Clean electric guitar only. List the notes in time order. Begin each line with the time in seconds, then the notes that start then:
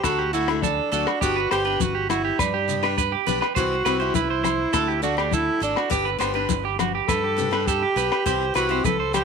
0.04 A4
0.19 G4
0.34 F#4
0.64 A4
0.92 A4
1.07 F#4
1.21 G4
1.36 B4
1.51 C5
1.65 B4
1.95 G4
2.11 F#4
2.25 G4
2.39 B4
2.54 G4
2.83 B4
2.98 B4
3.12 G4
3.27 B4
3.41 B4
3.55 C5
3.85 B4
4.00 C5
4.15 B4
4.30 C5
4.44 C5
4.73 A4
4.88 G4
5.04 F#4
5.18 G4
5.33 A4
5.63 A4
5.77 F#4
5.91 G4
6.05 B4
6.20 C5
6.35 B4
6.65 G4
6.80 F#4
6.95 G4
7.09 B4
7.24 G4
7.53 B4
7.68 A4
7.83 G4
7.97 B4
8.12 B4
8.26 C5
8.56 B4
8.71 C5
8.85 B4
9.00 C5
9.15 C5